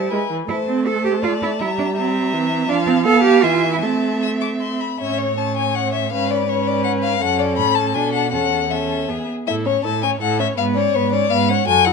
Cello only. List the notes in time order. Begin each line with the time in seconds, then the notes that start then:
0.49 E4
0.68 C4
0.87 A4
1.05 G4
1.23 F4
1.42 E4
1.60 E4
1.79 D4
1.96 C4
2.68 D4
2.87 C4
3.04 A4
3.23 G4
3.43 F4
3.73 E4
3.82 C4
5.00 A2
6.13 G#2
7.22 F#2
7.58 A2
7.94 B2
8.33 E2
9.09 E2
9.48 A2
9.84 A2
10.21 A2
10.58 G#2
10.95 G#2
11.31 G#2
11.68 F#2